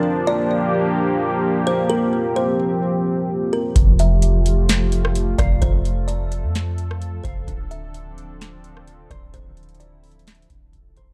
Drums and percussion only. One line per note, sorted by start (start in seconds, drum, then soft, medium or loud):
3.76 kick loud
3.76 closed hi-hat medium
3.99 closed hi-hat medium
4.22 closed hi-hat medium
4.46 closed hi-hat medium
4.69 snare loud
4.69 closed hi-hat medium
4.92 closed hi-hat medium
5.05 cross-stick loud
5.15 closed hi-hat medium
5.38 kick medium
5.38 cross-stick medium
5.38 closed hi-hat medium
5.62 kick loud
5.62 closed hi-hat medium
5.85 closed hi-hat medium
6.08 closed hi-hat medium
6.32 closed hi-hat medium
6.55 snare loud
6.55 closed hi-hat medium
6.78 closed hi-hat medium
6.91 cross-stick loud
7.02 closed hi-hat medium
7.24 kick medium
7.24 closed hi-hat medium
7.48 kick loud
7.48 closed hi-hat medium
7.71 closed hi-hat medium
7.94 closed hi-hat medium
8.18 closed hi-hat medium
8.41 snare loud
8.41 closed hi-hat medium
8.64 closed hi-hat medium
8.77 cross-stick medium
8.87 closed hi-hat medium
9.10 kick medium
9.10 cross-stick medium
9.10 closed hi-hat medium
9.34 kick loud
9.34 closed hi-hat medium
9.57 closed hi-hat medium
9.63 closed hi-hat medium
9.69 closed hi-hat medium
9.75 closed hi-hat medium
9.80 closed hi-hat medium
10.04 closed hi-hat soft
10.04 open hi-hat medium
10.12 closed hi-hat soft
10.19 closed hi-hat medium
10.27 snare loud
10.27 closed hi-hat medium
10.35 closed hi-hat medium
10.42 closed hi-hat medium
10.50 kick loud
10.50 closed hi-hat medium
10.73 kick medium
10.73 closed hi-hat medium
10.96 kick medium
10.96 closed hi-hat medium